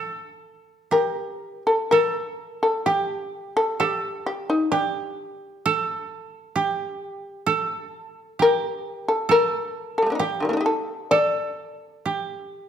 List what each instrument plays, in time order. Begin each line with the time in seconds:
Already playing: koto A4
0.91 koto G4, shamisen A#4
1.67 shamisen A4
1.91 koto A4, shamisen A#4
2.63 shamisen A4
2.86 koto G4, shamisen G4
3.57 shamisen A4
3.80 shamisen G4, koto A4
4.26 shamisen G4
4.50 shamisen D#4
4.72 shamisen D4, koto G4
5.66 koto A4
6.56 koto G4
7.46 koto A4
8.39 koto G4, shamisen A#4
9.08 shamisen A4
9.29 koto A4, shamisen A#4
9.98 shamisen A4
10.02 shamisen G3
10.06 shamisen A3 A#3
10.12 shamisen D4 D#4
10.19 koto G4, shamisen G4
10.40 shamisen D3 D#3
10.45 shamisen G3
10.49 shamisen A3 A#3
10.53 shamisen D4 D#4
10.61 shamisen G4
10.66 shamisen A4
11.11 koto A4, shamisen D5
12.06 koto G4
12.39 shamisen D#5
12.65 shamisen D5